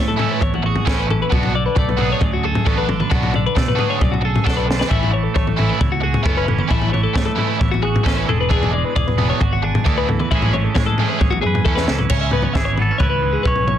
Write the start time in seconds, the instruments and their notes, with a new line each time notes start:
Already playing: fingered electric bass A2, clean electric guitar A2 E3 A3
0.08 clean electric guitar A4, floor tom
0.17 overdriven electric guitar E3 A3 C#4 E4, floor tom
0.21 clean electric guitar E4
0.31 clean electric guitar B4
0.41 fingered electric bass A1, clean electric guitar E2 C#5, muted overdriven electric guitar stroke, kick, floor tom
0.54 clean electric guitar F#4, floor tom
0.63 clean electric guitar F#4 G#4, muted overdriven electric guitar stroke
0.76 floor tom
0.85 fingered electric bass A1, overdriven electric guitar E3 A3 C#4 E4, clean electric guitar C#4 A4, kick, snare
0.99 clean electric guitar B4
1.07 clean electric guitar E3 A4, muted overdriven electric guitar stroke, floor tom
1.22 clean electric guitar B4
1.30 fingered electric bass B1, clean electric guitar B2 F#4, overdriven electric guitar F#3 B3 D4 F#4, kick, floor tom
1.43 floor tom
1.54 clean electric guitar D3 D5, muted overdriven electric guitar stroke
1.66 clean electric guitar B4
1.75 fingered electric bass B1, clean electric guitar A3 D5, muted overdriven electric guitar stroke, kick, floor tom, mid tom
1.89 clean electric guitar B4, floor tom
1.97 overdriven electric guitar F#3 B3 D4 F#4, clean electric guitar G#4, floor tom
2.12 clean electric guitar C#5
2.21 fingered electric bass D2, clean electric guitar F#2 D5, muted overdriven electric guitar stroke, kick, floor tom
2.33 clean electric guitar F#4
2.43 clean electric guitar G#4 A4, muted overdriven electric guitar stroke
2.55 floor tom
2.65 fingered electric bass A1, overdriven electric guitar F#3 B3 D4 F#4, clean electric guitar B3 A4, kick
2.78 clean electric guitar D4 B4
2.88 clean electric guitar D3 A4, muted overdriven electric guitar stroke, floor tom
3.00 clean electric guitar B4, mid tom
3.10 fingered electric bass B1, clean electric guitar B2 F#4, overdriven electric guitar F#3 B3 D4 F#4, kick, floor tom
3.23 floor tom
3.33 clean electric guitar D3 D5, muted overdriven electric guitar stroke, floor tom
3.46 clean electric guitar B4
3.55 fingered electric bass B2, clean electric guitar A3 D5, muted overdriven electric guitar stroke, kick, snare, floor tom, mid tom
3.68 clean electric guitar B4, floor tom
3.75 overdriven electric guitar F#3 B3 D4 F#4, floor tom
3.80 clean electric guitar G#4
3.90 clean electric guitar C#5
3.99 fingered electric bass B1, clean electric guitar F#2 D5, muted overdriven electric guitar stroke, kick, floor tom
4.12 clean electric guitar F#4, floor tom
4.21 clean electric guitar G#4, muted overdriven electric guitar stroke
4.25 clean electric guitar A4
4.36 floor tom
4.44 fingered electric bass B1, overdriven electric guitar F#3 B3 D4 F#4, clean electric guitar D4 A4, kick
4.48 snare
4.57 clean electric guitar B4
4.67 clean electric guitar D3 A4, muted overdriven electric guitar stroke, snare
4.79 clean electric guitar B4, snare
4.88 fingered electric bass A1, clean electric guitar A2 E4, overdriven electric guitar E3 A3 C#4 E4, kick, floor tom
5.03 floor tom
5.11 clean electric guitar E3 C#5, muted overdriven electric guitar stroke
5.24 clean electric guitar A4
5.34 fingered electric bass A1, clean electric guitar A3 C#5, muted overdriven electric guitar stroke, kick, floor tom, mid tom
5.47 clean electric guitar A4, floor tom
5.56 overdriven electric guitar E3 A3 C#4 E4, clean electric guitar E4, floor tom
5.69 clean electric guitar B4
5.78 fingered electric bass C#2, clean electric guitar E2 C#5, muted overdriven electric guitar stroke, kick, floor tom
5.92 clean electric guitar F#4
6.00 clean electric guitar F#4 G#4, muted overdriven electric guitar stroke
6.14 floor tom
6.23 fingered electric bass F#1, overdriven electric guitar E3 A3 C#4 E4, clean electric guitar B3 A4, kick
6.37 clean electric guitar C#4 B4
6.46 clean electric guitar E3 A4, muted overdriven electric guitar stroke, floor tom
6.58 clean electric guitar B4, mid tom
6.68 fingered electric bass A1, clean electric guitar A2 E4, overdriven electric guitar E3 A3 C#4 E4, kick, floor tom
6.82 floor tom
6.90 clean electric guitar E3 C#5, muted overdriven electric guitar stroke
6.94 floor tom
7.03 clean electric guitar A4
7.13 fingered electric bass A2, clean electric guitar A3 C#5, muted overdriven electric guitar stroke, kick, snare, floor tom, mid tom
7.26 clean electric guitar A4, floor tom
7.35 overdriven electric guitar E3 A3 C#4 E4, clean electric guitar E4, floor tom
7.48 clean electric guitar B4
7.57 fingered electric bass A1, clean electric guitar E2 C#5, muted overdriven electric guitar stroke, kick, floor tom
7.71 clean electric guitar F#4, floor tom
7.82 clean electric guitar F#4 G#4, muted overdriven electric guitar stroke
7.96 floor tom
8.03 fingered electric bass A1, overdriven electric guitar E3 A3 C#4 E4, clean electric guitar C#4 A4, kick, snare
8.16 clean electric guitar B4
8.26 fingered electric bass E1, clean electric guitar E2 E3 G#3 D4 G#4 A4, muted overdriven electric guitar stroke, floor tom
8.41 clean electric guitar B4
8.49 clean electric guitar E3 G#4, overdriven electric guitar E3 B3 D4 G#4, kick, floor tom
8.63 floor tom
8.71 clean electric guitar G#3 D5, muted overdriven electric guitar stroke
8.85 clean electric guitar B4
8.96 fingered electric bass E1, clean electric guitar G#4 D5, muted overdriven electric guitar stroke, kick, floor tom, mid tom
9.07 clean electric guitar B4, floor tom
9.17 clean electric guitar B2, overdriven electric guitar E3 B3 D4 G#4, floor tom
9.30 clean electric guitar C#5
9.41 fingered electric bass G#1, clean electric guitar F#4 D5, muted overdriven electric guitar stroke, kick, floor tom
9.53 clean electric guitar F#4
9.62 clean electric guitar D4 G#4, muted overdriven electric guitar stroke
9.75 floor tom
9.84 fingered electric bass D2, overdriven electric guitar E3 B3 D4 G#4, clean electric guitar E3 A4, kick
9.98 clean electric guitar B4
10.08 clean electric guitar E2 A4, muted overdriven electric guitar stroke, floor tom
10.19 clean electric guitar B4, mid tom
10.31 fingered electric bass A1, clean electric guitar A2 E3 G#3 C#4 E4, overdriven electric guitar E3 A3 C#4 E4, kick, floor tom
10.35 clean electric guitar G#4
10.42 floor tom
10.53 clean electric guitar E3 C#5, muted overdriven electric guitar stroke, floor tom
10.64 clean electric guitar A4
10.75 fingered electric bass A2, clean electric guitar C#5, muted overdriven electric guitar stroke, kick, snare, floor tom, mid tom
10.79 clean electric guitar G#3
10.86 clean electric guitar A4, floor tom
10.98 overdriven electric guitar E3 A3 C#4 E4, clean electric guitar G#4, floor tom
11.09 clean electric guitar B4
11.19 fingered electric bass A1, clean electric guitar C#5, muted overdriven electric guitar stroke, kick, floor tom
11.23 clean electric guitar E2
11.31 clean electric guitar F#4, floor tom
11.41 fingered electric bass F#2, clean electric guitar G#4, muted overdriven electric guitar stroke
11.46 clean electric guitar B4
11.55 floor tom
11.65 fingered electric bass E2, overdriven electric guitar E3 A3 C#4 E4, clean electric guitar C#4 A4, kick, high tom
11.75 clean electric guitar B4, snare
11.87 fingered electric bass C#2, clean electric guitar E3 A4, muted overdriven electric guitar stroke, snare
11.99 clean electric guitar B4, floor tom
12.10 fingered electric bass C#2, clean electric guitar C#3 C#4 C#5, kick, floor tom, crash
12.21 clean electric guitar E5
12.31 clean electric guitar B3 B4, floor tom
12.42 clean electric guitar C#5, floor tom, mid tom
12.53 fingered electric bass G#1, clean electric guitar E3 G#4 E5, kick, snare
12.65 clean electric guitar C#5
12.76 clean electric guitar B3 B4, floor tom
12.82 clean electric guitar A4
12.91 clean electric guitar C#4
12.98 fingered electric bass C#2, clean electric guitar B4 C#5, kick, floor tom, mid tom
13.03 clean electric guitar E4
13.10 clean electric guitar B4
13.22 clean electric guitar G#2
13.33 clean electric guitar G#4
13.43 fingered electric bass B1, clean electric guitar C#4 B4 C#5, kick
13.56 floor tom
13.67 clean electric guitar C#5, floor tom, mid tom